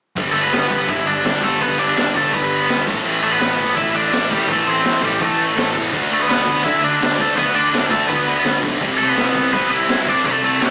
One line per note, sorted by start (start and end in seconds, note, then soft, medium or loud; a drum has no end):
0.16 0.29 G1 loud
0.16 0.52 G2 loud
0.16 0.51 D3 loud
0.16 0.52 G3 loud
0.16 kick loud
0.16 crash medium
0.33 0.46 G1 medium
0.33 0.42 A3 medium
0.33 0.42 A4 medium
0.33 crash medium
0.43 0.52 B3 medium
0.43 0.52 B4 medium
0.52 0.65 G1 medium
0.52 0.69 G2 medium
0.52 0.70 D3 loud
0.52 0.71 G3 loud
0.52 0.87 B3 medium
0.52 0.90 B4 medium
0.52 snare loud
0.52 crash medium
0.70 0.83 G1 medium
0.70 0.86 G2 medium
0.70 0.88 D3 medium
0.70 0.87 G3 medium
0.70 kick medium
0.70 crash medium
0.88 1.01 G1 medium
0.88 1.23 G2 loud
0.88 1.24 D3 loud
0.88 1.25 G3 loud
0.88 1.06 E4 medium
0.88 1.08 E5 loud
0.88 kick loud
0.88 crash medium
1.07 1.20 G1 medium
1.07 1.41 D4 medium
1.07 1.41 D5 loud
1.07 crash medium
1.24 1.37 G1 loud
1.24 1.41 G2 medium
1.24 1.41 D3 medium
1.24 1.42 G3 medium
1.24 snare loud
1.24 crash medium
1.42 1.55 G1 medium
1.42 1.60 G2 medium
1.42 1.60 D3 loud
1.42 1.60 G3 loud
1.42 1.60 A3 medium
1.42 1.61 A4 medium
1.42 kick loud
1.42 crash medium
1.61 1.73 G1 loud
1.61 1.96 G2 loud
1.61 1.96 D3 loud
1.61 1.96 G3 loud
1.61 1.77 B3 medium
1.61 1.79 B4 medium
1.61 kick loud
1.61 crash medium
1.79 1.91 G1 medium
1.79 2.12 D4 medium
1.79 2.16 D5 medium
1.79 crash medium
1.97 2.09 G1 medium
1.97 2.14 G2 medium
1.97 2.14 D3 loud
1.97 2.15 G3 loud
1.97 snare loud
1.97 crash medium
2.15 2.27 G1 medium
2.15 2.31 G2 medium
2.15 2.32 D3 medium
2.15 2.33 G3 medium
2.15 2.32 A3 medium
2.15 2.33 A4 medium
2.15 kick medium
2.15 crash medium
2.33 2.58 G1 medium
2.33 2.68 G2 loud
2.33 2.69 D3 loud
2.33 2.69 G3 loud
2.33 2.83 B3 medium
2.33 2.83 B4 medium
2.33 kick loud
2.33 crash medium
2.52 crash medium
2.69 2.82 G1 medium
2.69 2.86 G2 medium
2.69 2.86 D3 medium
2.69 2.86 G3 loud
2.69 snare loud
2.69 crash medium
2.87 2.99 A1 medium
2.87 3.04 A2 loud
2.87 3.05 E3 loud
2.87 3.05 A3 loud
2.87 kick loud
2.87 crash medium
3.05 3.18 A1 medium
3.05 3.40 A2 loud
3.05 3.41 E3 loud
3.05 3.41 A3 loud
3.05 crash medium
3.23 3.35 A1 medium
3.23 3.32 A3 medium
3.23 3.32 A4 medium
3.23 crash medium
3.32 3.39 B3 medium
3.32 3.40 B4 medium
3.40 3.53 A1 medium
3.40 3.58 A2 medium
3.40 3.59 E3 loud
3.40 3.59 A3 loud
3.40 3.74 B3 medium
3.40 3.75 B4 loud
3.40 snare loud
3.40 crash medium
3.59 3.71 A1 medium
3.59 3.75 A2 medium
3.59 3.76 E3 medium
3.59 3.77 A3 medium
3.59 kick medium
3.59 crash medium
3.75 3.89 A1 medium
3.75 4.12 A2 loud
3.75 4.12 E3 loud
3.75 4.13 A3 loud
3.75 3.92 E4 medium
3.75 3.96 E5 loud
3.75 kick loud
3.75 crash medium
3.95 4.07 A1 medium
3.95 4.28 D4 medium
3.95 4.33 D5 loud
3.95 crash medium
4.12 4.25 A1 medium
4.12 4.29 A2 medium
4.12 4.30 E3 medium
4.12 4.31 A3 loud
4.12 snare loud
4.12 crash medium
4.30 4.43 A1 medium
4.30 4.46 A2 medium
4.30 4.47 E3 medium
4.30 4.47 G3 medium
4.30 4.48 A3 loud
4.30 4.50 G4 medium
4.30 kick medium
4.30 crash medium
4.48 4.61 A1 medium
4.48 4.83 A2 loud
4.48 4.83 E3 loud
4.48 4.65 A3 medium
4.48 4.84 A3 loud
4.48 kick loud
4.48 crash medium
4.52 4.67 A4 medium
4.66 4.79 A1 loud
4.66 5.00 C4 medium
4.66 5.04 C5 loud
4.66 crash medium
4.84 4.97 A1 medium
4.84 5.01 A2 medium
4.84 5.01 E3 loud
4.84 5.03 A3 medium
4.84 snare loud
4.84 crash medium
5.02 5.15 A1 medium
5.02 5.19 A2 medium
5.02 5.19 E3 medium
5.02 5.20 G3 medium
5.02 5.21 A3 medium
5.02 5.25 G4 medium
5.02 kick medium
5.02 crash medium
5.20 5.46 A1 medium
5.20 5.55 A2 loud
5.20 5.55 E3 loud
5.20 5.57 A3 loud
5.20 5.71 A3 medium
5.20 kick loud
5.20 crash medium
5.25 5.77 A4 medium
5.40 crash medium
5.56 5.69 A1 medium
5.56 5.73 A2 medium
5.56 5.73 E3 medium
5.56 5.74 A3 loud
5.56 snare loud
5.56 crash medium
5.74 5.87 E2 medium
5.74 5.91 A2 medium
5.74 5.92 E3 medium
5.74 5.92 A3 loud
5.74 kick loud
5.74 crash medium
5.92 6.05 D2 loud
5.92 6.28 D3 loud
5.92 6.28 A3 loud
5.92 6.29 D4 loud
5.92 kick loud
5.92 crash medium
6.11 6.23 D2 medium
6.11 6.20 A3 medium
6.11 6.21 A4 medium
6.11 crash medium
6.21 6.27 B3 medium
6.21 6.28 B4 medium
6.28 6.41 D2 medium
6.28 6.46 D3 medium
6.28 6.47 A3 medium
6.28 6.62 B3 medium
6.28 6.48 D4 medium
6.28 6.64 B4 medium
6.28 snare loud
6.28 crash medium
6.47 6.60 D2 medium
6.47 6.64 D3 medium
6.47 6.64 A3 medium
6.47 6.64 D4 loud
6.47 kick medium
6.47 crash medium
6.64 6.78 D2 loud
6.64 6.99 D3 loud
6.64 6.99 A3 loud
6.64 7.00 D4 loud
6.64 6.81 E4 medium
6.64 6.84 E5 loud
6.64 kick loud
6.64 crash medium
6.84 6.96 D2 medium
6.84 7.17 D4 medium
6.84 7.19 D5 loud
6.84 crash medium
7.00 7.14 D2 medium
7.00 7.17 D3 medium
7.00 7.18 A3 medium
7.00 7.19 D4 medium
7.00 snare loud
7.00 crash medium
7.18 7.32 D2 medium
7.18 7.35 D3 medium
7.18 7.36 A3 loud
7.18 7.36 A3 medium
7.18 7.36 D4 loud
7.18 7.37 A4 medium
7.18 kick medium
7.18 crash medium
7.36 7.50 D2 medium
7.36 7.71 D3 loud
7.36 7.72 A3 loud
7.36 7.54 B3 medium
7.36 7.72 D4 loud
7.36 7.55 B4 loud
7.36 kick loud
7.36 crash loud
7.55 7.67 D2 medium
7.55 7.89 D4 medium
7.55 7.92 D5 loud
7.55 crash medium
7.73 7.86 D2 medium
7.73 7.89 D3 medium
7.73 7.90 A3 medium
7.73 7.90 D4 medium
7.73 snare loud
7.73 crash medium
7.90 8.04 D2 medium
7.90 8.08 D3 medium
7.90 8.07 A3 medium
7.90 8.08 A3 medium
7.90 8.09 D4 medium
7.90 8.07 A4 medium
7.90 kick medium
7.90 crash medium
8.09 8.34 D2 medium
8.09 8.44 D3 loud
8.09 8.44 A3 loud
8.09 8.59 B3 medium
8.09 8.45 D4 loud
8.09 8.59 B4 medium
8.09 kick loud
8.09 crash medium
8.27 crash medium
8.45 8.57 D2 medium
8.45 8.62 D3 medium
8.45 8.62 A3 medium
8.45 8.63 D4 medium
8.45 snare loud
8.45 crash medium
8.63 8.75 B1 loud
8.63 8.80 D3 medium
8.63 8.80 A3 medium
8.63 8.80 D4 medium
8.63 kick medium
8.63 crash medium
8.81 8.94 C2 loud
8.81 9.16 C3 loud
8.81 9.17 G3 loud
8.81 9.17 C4 loud
8.81 kick loud
8.81 crash medium
8.98 9.11 C2 medium
8.98 9.07 A3 medium
8.98 9.09 A4 medium
8.98 crash medium
9.09 9.50 B3 medium
9.09 9.52 B4 medium
9.16 9.29 C2 medium
9.16 9.34 C3 medium
9.16 9.34 G3 medium
9.16 9.35 C4 medium
9.16 snare loud
9.16 crash medium
9.34 9.47 C2 medium
9.34 9.52 C3 medium
9.34 9.53 G3 loud
9.34 9.54 C4 loud
9.34 kick medium
9.34 crash medium
9.53 9.66 C2 medium
9.53 9.88 C3 loud
9.53 9.88 G3 loud
9.53 9.70 B3 medium
9.53 9.90 C4 loud
9.53 9.70 B4 medium
9.53 kick loud
9.53 crash medium
9.70 9.83 C2 medium
9.70 10.05 E4 medium
9.70 10.08 E5 loud
9.70 crash medium
9.88 10.01 C2 medium
9.88 10.06 C3 medium
9.88 10.06 G3 medium
9.88 10.08 C4 medium
9.88 snare loud
9.88 crash medium
10.07 10.19 C2 medium
10.07 10.24 C3 medium
10.07 10.24 G3 medium
10.07 10.24 C4 loud
10.07 10.25 D4 medium
10.07 10.27 D5 medium
10.07 kick medium
10.07 crash medium
10.25 10.37 C2 medium
10.25 10.60 C3 loud
10.25 10.60 G3 loud
10.25 10.42 A3 medium
10.25 10.60 C4 loud
10.25 10.43 A4 loud
10.25 kick loud
10.25 crash medium
10.43 10.55 C2 medium
10.43 10.61 A3 medium
10.43 10.60 A4 medium
10.43 crash medium
10.61 10.70 C2 medium
10.61 10.70 C3 medium
10.61 10.70 G3 medium
10.61 10.70 C4 loud
10.61 10.70 G4 medium
10.61 snare loud
10.61 crash medium